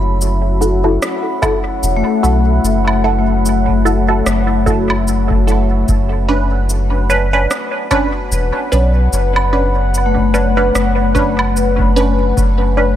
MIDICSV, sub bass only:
0, 0, Header, 1, 2, 480
1, 0, Start_track
1, 0, Tempo, 810811
1, 1563, Time_signature, 4, 2, 24, 8
1, 7673, End_track
2, 0, Start_track
2, 0, Title_t, "Sub bass"
2, 0, Program_c, 0, 38
2, 0, Note_on_c, 0, 30, 95
2, 583, Note_off_c, 0, 30, 0
2, 1082, Note_on_c, 0, 28, 75
2, 1203, Note_off_c, 0, 28, 0
2, 1324, Note_on_c, 0, 35, 77
2, 1538, Note_off_c, 0, 35, 0
2, 1562, Note_on_c, 0, 30, 96
2, 2503, Note_off_c, 0, 30, 0
2, 2522, Note_on_c, 0, 30, 84
2, 3463, Note_off_c, 0, 30, 0
2, 3486, Note_on_c, 0, 30, 96
2, 4424, Note_off_c, 0, 30, 0
2, 4922, Note_on_c, 0, 28, 79
2, 5043, Note_off_c, 0, 28, 0
2, 5165, Note_on_c, 0, 35, 81
2, 5379, Note_off_c, 0, 35, 0
2, 5403, Note_on_c, 0, 30, 96
2, 6343, Note_off_c, 0, 30, 0
2, 6364, Note_on_c, 0, 30, 84
2, 7303, Note_off_c, 0, 30, 0
2, 7324, Note_on_c, 0, 30, 96
2, 7673, Note_off_c, 0, 30, 0
2, 7673, End_track
0, 0, End_of_file